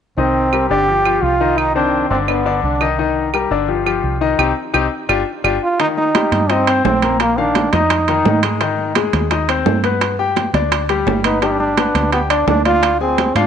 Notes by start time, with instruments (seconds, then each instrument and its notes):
0.17 fingered electric bass C2, grand piano D#3 D#4 D#5, trombone C4
0.53 grand piano G3 G4 A#4, claves
0.70 fingered electric bass G1, grand piano D3 D4 D5, trombone G4
0.88 grand piano F3 F4 G4
1.05 grand piano F3 F4 G4, claves
1.22 fingered electric bass C2, trombone F4
1.41 grand piano D#3 D#4 D#5
1.58 trombone D#4, claves
1.75 grand piano D#3 C4 C5, trombone D4
2.10 fingered electric bass G1, grand piano D3 D4 D5, trombone C4
2.28 grand piano D3 D4 D5, trombone B3, claves
2.45 grand piano D3 D4 D5
2.63 fingered electric bass C2, trombone D4
2.81 grand piano D#3 D#4 D#5, claves
2.98 grand piano D#3 D#4 D#5
3.34 grand piano G3 G4 A#4, claves
3.51 fingered electric bass G1, grand piano D3 D4 D5
3.68 grand piano F3 F4 G4
3.86 grand piano F3 F4 G4, claves
4.04 fingered electric bass C2
4.21 grand piano D#3 D#4 D#5
4.38 fingered electric bass C2, grand piano C4 D#4 G4, claves
4.74 fingered electric bass C2, grand piano C4 D#4 G4, claves
5.09 fingered electric bass G1, grand piano D4 F4 G4, claves
5.44 fingered electric bass G1, grand piano D4 F4 G4, claves
5.63 trombone F4
5.80 grand piano D#3 D#4, trombone D#4, high bongo, high conga, high timbale
5.97 trombone D#4, high conga
6.15 grand piano G3 G4, high bongo, high conga, high timbale, low timbale
6.32 fingered electric bass G2, high conga, high timbale
6.50 trombone C4, grand piano D#4 D#5, high bongo, high conga, high timbale
6.67 grand piano C4 C5, high conga, high timbale
6.84 fingered electric bass A#1, trombone C4, high bongo, low bongo, high conga, low timbale
7.02 grand piano A#3 A#4, high conga, high timbale
7.20 trombone A#3, high bongo, high conga, high timbale
7.38 grand piano D#3 F5, trombone D4, high bongo, high conga
7.55 high bongo, high conga, high timbale, low timbale
7.73 fingered electric bass F2, trombone D#4, grand piano D#4 D#5, high bongo, high conga, high timbale
7.90 high bongo, high conga, high timbale
8.08 grand piano D#3 D#4, high bongo, high conga, high timbale
8.25 fingered electric bass G#2, high bongo, low bongo, high conga, low timbale
8.43 grand piano G#3 G#4, high conga, high timbale
8.61 grand piano D#3 D#4, high bongo, high conga, high timbale
8.78 high conga
8.95 grand piano G#3 G#4, high bongo, high conga, high timbale, low timbale
9.13 fingered electric bass D#2, high conga, high timbale
9.31 grand piano D#4 D#5, high bongo, high conga, high timbale
9.49 grand piano C4 C5, high conga, high timbale
9.66 fingered electric bass G2, high bongo, low bongo, high conga, low timbale
9.84 grand piano B3 B4, high conga, high timbale
10.01 high bongo, high conga, high timbale
10.19 grand piano G4 G5, high bongo, high conga
10.36 high bongo, high conga, high timbale, low timbale
10.53 fingered electric bass D2, grand piano D4 D5, high bongo, high conga, high timbale
10.72 high bongo, high conga, high timbale
10.89 grand piano G3 G4, high bongo, high conga, high timbale
11.06 fingered electric bass G1, high bongo, low bongo, high conga, low timbale
11.24 grand piano B3 B4, trombone D#4, high conga, high timbale
11.42 grand piano G3 G4, trombone D4 D#4, high bongo, high conga, high timbale
11.51 trombone D4
11.60 trombone D4, high conga
11.77 grand piano B3 B4, high bongo, high conga, high timbale, low timbale
11.94 fingered electric bass D2, high conga, high timbale
12.12 trombone B3, grand piano G4 G5, high bongo, high conga, high timbale
12.30 grand piano D4 D5, trombone D4, high conga, high timbale
12.47 fingered electric bass D2, trombone D4, high bongo, low bongo, high conga, low timbale
12.65 grand piano D4 D5, trombone F4, high conga, high timbale
12.83 high bongo, high conga, high timbale
13.01 trombone C4, grand piano G#4 G#5, high bongo, high conga
13.18 high bongo, high conga, high timbale, low timbale
13.35 fingered electric bass G#2, trombone D4, grand piano F4 F5, high bongo, high conga, high timbale